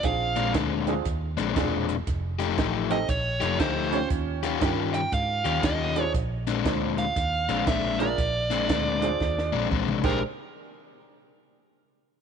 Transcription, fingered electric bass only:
X:1
M:4/4
L:1/8
Q:"Swing" 1/4=118
K:Bbmix
V:1 name="Fingered electric bass" clef=bass
B,,,2 D,,2 E,, B,,, =E,,,2 | F,,,2 =A,,,2 B,,, F,,, D,,2 | E,,2 G,,2 A,, E,, E,,2 | B,,,2 D,,2 E,, B,,, B,,,2 |
B,,,2 D,,2 E,, B,,, B,,, B,,, | z8 |]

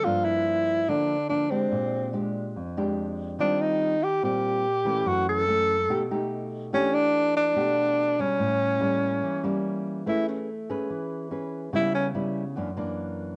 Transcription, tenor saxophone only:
X:1
M:4/4
L:1/8
Q:1/4=144
K:Amix
V:1 name="Tenor saxophone"
=F E3 D2 D =C- | =C2 z6 | D _E2 G G4 | F A4 z3 |
C D2 D4 C- | C6 z2 | [K:A] E C z6 | E C z6 |]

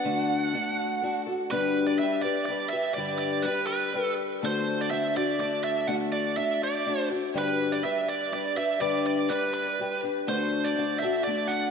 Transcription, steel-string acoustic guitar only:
X:1
M:3/4
L:1/8
Q:1/4=123
K:G
V:1 name="Steel-string acoustic guitar"
[D,A,DFA]2 [A,DFA]2 [A,DFA] [DFA] | [G,,D,G,DGB]2 [G,DGB] [G,DGB] [G,DGB] [G,DGB] | [G,,D,G,DGB]2 [G,DGB]2 [G,DGB]2 | [D,A,DFA]2 [A,DFA] [DFA] [A,DFA]2 |
[D,A,DFA]2 [A,DFA]2 [A,DFA] [DFA] | [G,,D,G,DGB]2 [G,DGB]2 [G,DGB] [G,DGB] | [G,,D,G,DGB]2 [G,DGB]2 [G,DGB] [G,DGB] | [D,A,DFA]2 [A,DFA] [DFA] [A,DFA]2 |]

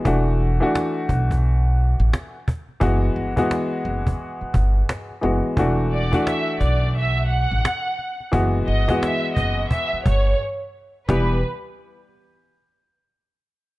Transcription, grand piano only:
X:1
M:4/4
L:1/16
Q:"Swing 16ths" 1/4=87
K:F#phr
V:1 name="Grand piano"
[E,A,DF]3 [E,A,DF]8- [E,A,DF]2 z3 | [E,^G,B,F]3 [E,G,B,F]8- [E,G,B,F]2 z [E,G,B,F]2 | [E,A,DF]3 [E,A,DF]8- [E,A,DF]2 z3 | [E,^G,B,F]3 [E,G,B,F]8- [E,G,B,F] z4 |
[E,G,B,G]2 z12 z2 |]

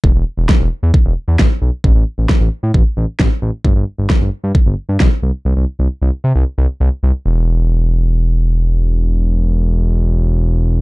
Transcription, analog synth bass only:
X:1
M:4/4
L:1/16
Q:1/4=133
K:Em
V:1 name="Analog synth bass" clef=bass
E,,, E,,, z E,,, z E,,, z E,, z E,,, z E,, A,,, z B,,, z | A,,, A,,, z A,,, z A,,, z A,, A,,, z A,,, z A,,, z A,,, z | G,,, G,,, z G,,, z G,,, z G,, z G,,, z G,, B,,, z C,, z | C,, C,, z C,, z C,, z C, C,, z C,, z C,, z C,, z |
E,,,16- | E,,,16 |]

